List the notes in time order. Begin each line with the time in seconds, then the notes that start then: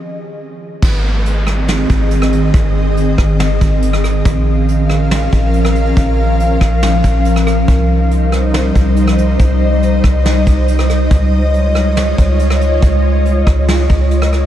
0.82 G#1 D#3 C4 G#4 D#5, kick, crash, downlifter
1.25 closed hi-hat
1.47 cross-stick
1.68 snare, closed hi-hat
1.89 G#1, kick, closed hi-hat
2.11 closed hi-hat
2.22 cross-stick
2.33 closed hi-hat
2.54 G#1, kick, closed hi-hat
2.97 closed hi-hat
3.18 G#1, kick, cross-stick
3.40 snare, closed hi-hat
3.61 G#1, kick, closed hi-hat
3.82 closed hi-hat
3.93 cross-stick
4.04 cross-stick, closed hi-hat
4.25 A#1 F3 C#4 A#4 F5, kick, closed hi-hat
4.68 closed hi-hat
4.90 cross-stick
5.11 snare, closed hi-hat
5.32 A#1, kick, closed hi-hat
5.54 closed hi-hat
5.65 cross-stick
5.75 closed hi-hat
5.97 A#1, kick, closed hi-hat
6.40 closed hi-hat
6.61 A#1, kick, cross-stick
6.83 snare, closed hi-hat
7.04 A#1, kick, closed hi-hat
7.25 closed hi-hat
7.36 cross-stick
7.47 cross-stick, closed hi-hat
7.68 C2 G3 D#4 C5 D#5, kick, closed hi-hat
8.11 closed hi-hat
8.32 cross-stick
8.54 snare, closed hi-hat
8.75 C2, kick, closed hi-hat
8.96 closed hi-hat
9.08 cross-stick
9.18 closed hi-hat
9.40 C2, kick, closed hi-hat
9.83 closed hi-hat
10.04 C2, kick, cross-stick
10.25 snare, closed hi-hat
10.46 C2, kick, closed hi-hat
10.68 closed hi-hat
10.79 cross-stick
10.90 cross-stick, closed hi-hat
11.11 C#2 G#3 F4 C#5, kick, closed hi-hat
11.54 closed hi-hat
11.75 cross-stick
11.97 snare, closed hi-hat
12.18 C#2, kick, closed hi-hat
12.39 closed hi-hat
12.50 cross-stick
12.61 closed hi-hat
12.82 C#2, kick, closed hi-hat
13.25 closed hi-hat
13.47 C#2, kick, cross-stick
13.68 snare, closed hi-hat
13.89 C#2, kick, closed hi-hat
14.11 closed hi-hat
14.22 cross-stick
14.33 cross-stick, closed hi-hat